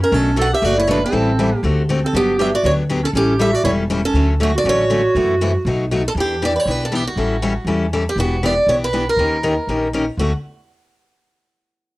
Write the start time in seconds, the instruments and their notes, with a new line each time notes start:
0.01 clarinet C#4, steel-string acoustic guitar A#4
0.12 upright bass B1, steel-string acoustic guitar B2 F#3 A3 D4 F#4 A4, clarinet C#4
0.36 steel-string acoustic guitar B2 F#3 A3 D4 F#4, clarinet A4
0.42 steel-string acoustic guitar F#5
0.53 clarinet G4, steel-string acoustic guitar E5
0.62 upright bass F#1, steel-string acoustic guitar B2 F#3 A3 D4 F#4 D5, clarinet F#4
0.78 clarinet E4, steel-string acoustic guitar C#5
0.87 steel-string acoustic guitar B2 F#3 A3 D4 F#4 B4, clarinet D4
1.04 clarinet C4, steel-string acoustic guitar A4
1.12 upright bass A1, steel-string acoustic guitar E3 G3 C4 E4 A4
1.39 steel-string acoustic guitar E3 G3 C4 E4 A4
1.56 clarinet A#3, steel-string acoustic guitar G4
1.63 upright bass D2, steel-string acoustic guitar D3 A3 C4 F#4 A4
1.89 steel-string acoustic guitar D3 A3 C4 F#4 A4
2.03 clarinet C4, steel-string acoustic guitar A4
2.13 upright bass G1, steel-string acoustic guitar D3 F#3 B3 D4 G4, clarinet B3
2.39 steel-string acoustic guitar D3 F#3 B3 D4 G4 E5, clarinet G4
2.54 clarinet F#4, steel-string acoustic guitar D5
2.63 upright bass D2, steel-string acoustic guitar D3 F#3 B3 D4 G4 C#5, clarinet F#4
2.90 steel-string acoustic guitar D3 F#3 B3 D4 G4
3.03 clarinet C#4, steel-string acoustic guitar A4
3.13 upright bass A1, steel-string acoustic guitar E3 G3 C#4 E4 G4 A4, clarinet C#4
3.38 steel-string acoustic guitar E3 G3 C#4 E4 A4 E5, clarinet G4
3.52 clarinet F#4, steel-string acoustic guitar D5
3.64 upright bass E1, steel-string acoustic guitar E3 G3 C#4 E4 A4 C#5, clarinet E4
3.90 steel-string acoustic guitar E3 G3 C#4 E4 A4
4.03 clarinet C#4, steel-string acoustic guitar A4
4.13 upright bass D2, steel-string acoustic guitar D3 F#3 A3 C#4 F#4
4.40 steel-string acoustic guitar D3 F#3 A3 C#4 F#4, clarinet A3
4.55 clarinet F#4, steel-string acoustic guitar D5
4.64 upright bass A1, steel-string acoustic guitar D3 F#3 A3 C#4 F#4, clarinet F#4
4.69 steel-string acoustic guitar C#5
4.90 steel-string acoustic guitar D3 F#3 A3 C#4 F#4
5.15 upright bass F#2, steel-string acoustic guitar C3 E3 A3 E4 F#4
5.41 steel-string acoustic guitar C3 E3 A3 E4 F#4
5.65 upright bass B1, steel-string acoustic guitar B2 F#3 A3 D#4 F#4
5.91 steel-string acoustic guitar B2 F#3 A3 D#4 F#4
6.08 steel-string acoustic guitar A4
6.15 upright bass E2, steel-string acoustic guitar E3 B3 D4 G4
6.20 steel-string acoustic guitar G4
6.42 steel-string acoustic guitar E3 B3 D4 G4 D5
6.56 steel-string acoustic guitar B4 C#5
6.66 upright bass B1, steel-string acoustic guitar E3 B3 D4 G4
6.71 steel-string acoustic guitar B4
6.85 steel-string acoustic guitar A4
6.92 steel-string acoustic guitar E3 B3 D4 G4
7.07 steel-string acoustic guitar F#4
7.16 upright bass A1, steel-string acoustic guitar E3 G3 C#4 E4 A4
7.42 steel-string acoustic guitar E3 G3 C#4 E4 A4
7.65 upright bass E2, steel-string acoustic guitar E3 G3 C#4 E4 A4
7.93 steel-string acoustic guitar E3 G3 C#4 E4 A4
8.09 steel-string acoustic guitar G4
8.16 upright bass E1, steel-string acoustic guitar E3 B3 D4 G4
8.20 steel-string acoustic guitar F#4
8.43 steel-string acoustic guitar E3 B3 D4 G4 D5
8.67 upright bass B1, steel-string acoustic guitar E3 B3 D4 G4 C#5
8.84 steel-string acoustic guitar B4
8.93 steel-string acoustic guitar E3 B3 D4 G4
9.09 steel-string acoustic guitar A#4
9.16 upright bass D#2, steel-string acoustic guitar D#3 A#3 C#4 G4 A#4
9.43 steel-string acoustic guitar D#3 A#3 C#4 G4 A#4
9.67 upright bass A#1, steel-string acoustic guitar D#3 A#3 C#4 G4 A#4
9.93 steel-string acoustic guitar D#3 A#3 C#4 G4 A#4
10.17 upright bass D2, steel-string acoustic guitar D3 F#3 A3 C#4 F#4